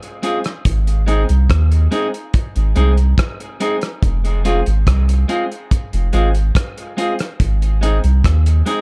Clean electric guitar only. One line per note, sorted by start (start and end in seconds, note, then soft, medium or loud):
0.22 0.38 G#3 medium
0.22 0.38 C4 medium
0.22 0.38 F4 medium
0.22 0.39 G#4 loud
1.07 1.22 G#3 medium
1.07 1.22 C4 medium
1.07 1.22 D#4 medium
1.07 1.23 G#4 medium
1.91 2.06 G#3 medium
1.91 2.07 C4 loud
1.91 2.07 D#4 loud
1.91 2.07 G#4 loud
2.76 2.91 G#3 medium
2.76 2.91 C4 medium
2.76 2.91 D#4 medium
2.76 2.91 G#4 loud
3.60 3.75 G#3 medium
3.60 3.75 C4 medium
3.60 3.76 D#4 medium
3.60 3.76 G#4 medium
4.45 4.59 G#3 medium
4.45 4.60 C4 medium
4.45 4.60 F4 loud
4.45 4.60 G#4 medium
5.28 5.43 G#3 medium
5.28 5.44 C4 medium
5.28 5.44 F4 loud
5.28 5.44 G#4 loud
6.13 6.28 G#3 medium
6.13 6.28 C4 medium
6.13 6.28 F4 medium
6.13 6.29 G#4 medium
6.97 7.12 G#3 medium
6.97 7.12 C4 medium
6.97 7.13 F4 medium
6.97 7.13 G#4 medium
7.81 7.97 G#3 medium
7.81 7.97 C4 medium
7.81 7.97 D#4 medium
7.81 7.97 G#4 medium
8.66 8.81 G#3 loud
8.66 8.81 C4 medium
8.66 8.81 D#4 medium
8.66 8.81 G#4 loud